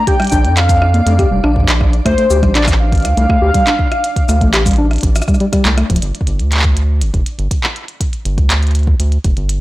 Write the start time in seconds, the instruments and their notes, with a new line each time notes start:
Already playing: synth texture D4 D5
0.07 tine electric piano G4, soft synth lead G5, kick, closed hi-hat
0.20 tine electric piano G3, cross-stick, closed hi-hat
0.22 closed hi-hat
0.24 closed hi-hat
0.27 closed hi-hat
0.30 analog synth bass A#1, tine electric piano D4, kick, closed hi-hat, cabasa
0.44 analog synth bass F2, closed hi-hat
0.57 soft synth lead F5, cross-stick, clap, closed hi-hat
0.69 kick, closed hi-hat, cabasa
0.82 cross-stick
0.94 tine electric piano A#3, closed hi-hat
1.06 analog synth bass F2, tine electric piano A3, closed hi-hat
1.19 tine electric piano G4, kick, cross-stick, closed hi-hat
1.31 analog synth bass F1, tine electric piano G3
1.44 analog synth bass A#1, tine electric piano D4, cross-stick
1.56 kick
1.60 kick
1.64 kick
1.69 clap, closed hi-hat
1.81 kick, cross-stick
1.93 closed hi-hat
2.05 analog synth bass D2, tine electric piano A3, soft synth lead C5, kick, cross-stick, closed hi-hat
2.18 tine electric piano A3, closed hi-hat
2.30 analog synth bass D2, tine electric piano G4, cabasa
2.43 analog synth bass A1, tine electric piano G3, kick, cross-stick, closed hi-hat
2.55 tine electric piano D4, soft synth lead D5, clap, closed hi-hat
2.64 kick, clap
2.68 cross-stick, closed hi-hat, cabasa
2.72 clap
2.80 soft synth lead F5
2.92 kick, closed hi-hat
2.95 closed hi-hat
2.98 closed hi-hat
3.00 closed hi-hat
3.02 analog synth bass D2, cross-stick, closed hi-hat
3.05 closed hi-hat
3.17 analog synth bass C2, tine electric piano A3, closed hi-hat
3.29 tine electric piano A3, kick, cross-stick
3.42 analog synth bass D2, tine electric piano G4
3.54 tine electric piano G3, kick, closed hi-hat
3.67 tine electric piano D4, cross-stick, clap, closed hi-hat
3.79 kick
3.92 cross-stick, closed hi-hat
4.04 closed hi-hat
4.16 kick, closed hi-hat
4.29 analog synth bass D2, tine electric piano A3, cross-stick, cabasa
4.41 analog synth bass A1, tine electric piano A3, kick, closed hi-hat
4.54 tine electric piano G4, cross-stick, clap, closed hi-hat
4.66 tine electric piano G3, kick, closed hi-hat, cabasa
4.69 closed hi-hat
4.71 closed hi-hat
4.73 closed hi-hat
4.79 tine electric piano D4
4.91 cross-stick, closed hi-hat
4.93 closed hi-hat
4.96 closed hi-hat
4.98 closed hi-hat
5.01 analog synth bass A1, kick, closed hi-hat
5.03 closed hi-hat
5.16 cross-stick, closed hi-hat, cabasa
5.22 cross-stick, cabasa
5.28 tine electric piano G3, kick, cross-stick, cabasa
5.34 cross-stick, cabasa
5.40 tine electric piano G3, closed hi-hat
5.53 tine electric piano G3, kick, cross-stick, closed hi-hat
5.65 analog synth bass C2, tine electric piano A3, clap, closed hi-hat
5.78 tine electric piano A3, cross-stick, closed hi-hat
5.90 analog synth bass D1, tine electric piano F3, kick, closed hi-hat
5.96 closed hi-hat
6.02 analog synth bass G1, closed hi-hat
6.15 closed hi-hat
6.21 kick
6.27 analog synth bass G1, closed hi-hat
6.39 analog synth bass D2, closed hi-hat
6.52 clap, closed hi-hat
6.54 clap
6.57 clap
6.59 clap
6.62 kick, clap, closed hi-hat
6.77 closed hi-hat
7.01 analog synth bass G1, closed hi-hat
7.14 analog synth bass F1, kick, closed hi-hat
7.26 closed hi-hat
7.39 analog synth bass G1, closed hi-hat
7.51 kick, closed hi-hat
7.63 clap
7.76 closed hi-hat
7.88 closed hi-hat
8.01 kick, closed hi-hat
8.13 closed hi-hat
8.25 analog synth bass G1, closed hi-hat
8.38 analog synth bass D2, kick, closed hi-hat
8.50 clap, closed hi-hat
8.63 closed hi-hat
8.67 closed hi-hat
8.71 closed hi-hat
8.75 closed hi-hat
8.79 closed hi-hat
8.83 closed hi-hat
8.87 kick
9.00 analog synth bass D2, closed hi-hat
9.12 closed hi-hat
9.24 analog synth bass F1, kick, closed hi-hat
9.37 analog synth bass G1, closed hi-hat
9.49 closed hi-hat